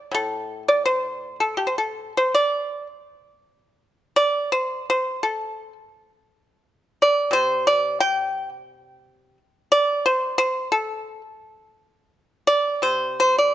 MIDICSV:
0, 0, Header, 1, 2, 480
1, 0, Start_track
1, 0, Tempo, 719424
1, 77, Time_signature, 4, 2, 24, 8
1, 1041, Tempo, 756620
1, 2001, Tempo, 715990
1, 3921, Tempo, 688073
1, 8241, Tempo, 728155
1, 9173, End_track
2, 0, Start_track
2, 0, Title_t, "Pipa"
2, 0, Program_c, 0, 105
2, 76, Note_on_c, 0, 45, 49
2, 97, Note_on_c, 0, 69, 70
2, 415, Note_off_c, 0, 69, 0
2, 456, Note_on_c, 0, 74, 73
2, 556, Note_off_c, 0, 74, 0
2, 570, Note_on_c, 0, 72, 75
2, 902, Note_off_c, 0, 72, 0
2, 936, Note_on_c, 0, 69, 59
2, 1042, Note_off_c, 0, 69, 0
2, 1048, Note_on_c, 0, 67, 61
2, 1109, Note_on_c, 0, 72, 45
2, 1112, Note_off_c, 0, 67, 0
2, 1158, Note_off_c, 0, 72, 0
2, 1181, Note_on_c, 0, 69, 56
2, 1395, Note_off_c, 0, 69, 0
2, 1430, Note_on_c, 0, 72, 61
2, 1524, Note_off_c, 0, 45, 0
2, 1531, Note_off_c, 0, 72, 0
2, 1539, Note_on_c, 0, 74, 57
2, 1867, Note_off_c, 0, 74, 0
2, 2731, Note_on_c, 0, 74, 78
2, 2952, Note_off_c, 0, 74, 0
2, 2971, Note_on_c, 0, 72, 75
2, 3190, Note_off_c, 0, 72, 0
2, 3223, Note_on_c, 0, 72, 74
2, 3437, Note_off_c, 0, 72, 0
2, 3447, Note_on_c, 0, 69, 56
2, 3778, Note_off_c, 0, 69, 0
2, 4677, Note_on_c, 0, 74, 64
2, 4877, Note_on_c, 0, 48, 52
2, 4887, Note_off_c, 0, 74, 0
2, 4893, Note_on_c, 0, 72, 78
2, 5114, Note_off_c, 0, 72, 0
2, 5129, Note_on_c, 0, 74, 75
2, 5353, Note_off_c, 0, 74, 0
2, 5363, Note_on_c, 0, 79, 87
2, 5700, Note_off_c, 0, 79, 0
2, 6316, Note_off_c, 0, 48, 0
2, 6558, Note_on_c, 0, 74, 83
2, 6783, Note_off_c, 0, 74, 0
2, 6794, Note_on_c, 0, 72, 90
2, 7012, Note_off_c, 0, 72, 0
2, 7021, Note_on_c, 0, 72, 90
2, 7253, Note_off_c, 0, 72, 0
2, 7256, Note_on_c, 0, 69, 68
2, 7600, Note_off_c, 0, 69, 0
2, 8467, Note_on_c, 0, 74, 80
2, 8692, Note_off_c, 0, 74, 0
2, 8696, Note_on_c, 0, 48, 43
2, 8700, Note_on_c, 0, 72, 74
2, 8931, Note_off_c, 0, 72, 0
2, 8945, Note_on_c, 0, 72, 71
2, 9063, Note_off_c, 0, 72, 0
2, 9068, Note_on_c, 0, 74, 57
2, 9173, Note_off_c, 0, 48, 0
2, 9173, Note_off_c, 0, 74, 0
2, 9173, End_track
0, 0, End_of_file